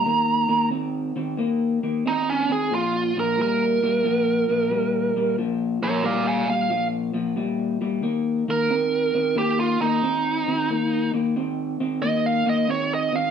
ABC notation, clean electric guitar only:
X:1
M:4/4
L:1/8
Q:"Swing" 1/4=90
K:Eb
V:1 name="Clean electric guitar" clef=bass
[E,B,] [E,B,] [E,C] [E,C] [E,B,] [E,B,] [E,C] [E,C] | [B,,F,] [B,,F,] [B,,G,] [B,,G,] [B,,F,] [B,,F,] [B,,G,] [B,,G,] | [B,,F,] [B,,F,] [B,,G,] [B,,G,] [B,,F,] [B,,F,] [B,,G,] [B,,G,] | [E,B,] [E,B,] [E,C] [E,C] [E,B,] [E,B,] [E,C] [E,C] |
[E,B,] [E,B,] [E,C] [E,C] [E,B,] [E,B,] [E,C] [E,C] |]